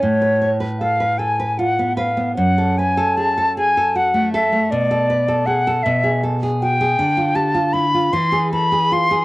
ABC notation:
X:1
M:6/8
L:1/16
Q:3/8=52
K:F#m
V:1 name="Flute"
c4 ^e2 g2 f2 e2 | f2 g2 a2 g2 f2 e2 | d4 f2 e2 z2 =g2- | [K:Ddor] g2 a2 b2 c'2 b2 c'2 |]
V:2 name="Nylon-string guitar"
A,, B c B A B A B ^E B, B B, | F,, A B A G A G A F A, A A, | B,, A B A G A B,, G A G F G | [K:Ddor] D, F G F E F E, ^G A G F G |]